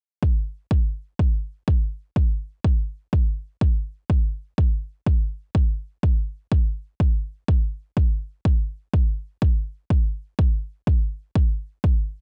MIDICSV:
0, 0, Header, 1, 2, 480
1, 0, Start_track
1, 0, Tempo, 483871
1, 225, Time_signature, 4, 2, 24, 8
1, 12113, End_track
2, 0, Start_track
2, 0, Title_t, "Drums"
2, 224, Note_on_c, 9, 36, 103
2, 323, Note_off_c, 9, 36, 0
2, 704, Note_on_c, 9, 36, 94
2, 803, Note_off_c, 9, 36, 0
2, 1184, Note_on_c, 9, 36, 106
2, 1283, Note_off_c, 9, 36, 0
2, 1664, Note_on_c, 9, 36, 91
2, 1763, Note_off_c, 9, 36, 0
2, 2143, Note_on_c, 9, 36, 108
2, 2243, Note_off_c, 9, 36, 0
2, 2623, Note_on_c, 9, 36, 96
2, 2723, Note_off_c, 9, 36, 0
2, 3103, Note_on_c, 9, 36, 113
2, 3203, Note_off_c, 9, 36, 0
2, 3584, Note_on_c, 9, 36, 98
2, 3683, Note_off_c, 9, 36, 0
2, 4064, Note_on_c, 9, 36, 115
2, 4163, Note_off_c, 9, 36, 0
2, 4544, Note_on_c, 9, 36, 97
2, 4643, Note_off_c, 9, 36, 0
2, 5024, Note_on_c, 9, 36, 110
2, 5123, Note_off_c, 9, 36, 0
2, 5504, Note_on_c, 9, 36, 99
2, 5603, Note_off_c, 9, 36, 0
2, 5984, Note_on_c, 9, 36, 108
2, 6083, Note_off_c, 9, 36, 0
2, 6464, Note_on_c, 9, 36, 101
2, 6563, Note_off_c, 9, 36, 0
2, 6944, Note_on_c, 9, 36, 113
2, 7043, Note_off_c, 9, 36, 0
2, 7424, Note_on_c, 9, 36, 97
2, 7523, Note_off_c, 9, 36, 0
2, 7904, Note_on_c, 9, 36, 106
2, 8003, Note_off_c, 9, 36, 0
2, 8384, Note_on_c, 9, 36, 95
2, 8483, Note_off_c, 9, 36, 0
2, 8864, Note_on_c, 9, 36, 108
2, 8963, Note_off_c, 9, 36, 0
2, 9344, Note_on_c, 9, 36, 95
2, 9443, Note_off_c, 9, 36, 0
2, 9824, Note_on_c, 9, 36, 102
2, 9923, Note_off_c, 9, 36, 0
2, 10304, Note_on_c, 9, 36, 97
2, 10404, Note_off_c, 9, 36, 0
2, 10784, Note_on_c, 9, 36, 106
2, 10883, Note_off_c, 9, 36, 0
2, 11264, Note_on_c, 9, 36, 96
2, 11363, Note_off_c, 9, 36, 0
2, 11744, Note_on_c, 9, 36, 104
2, 11843, Note_off_c, 9, 36, 0
2, 12113, End_track
0, 0, End_of_file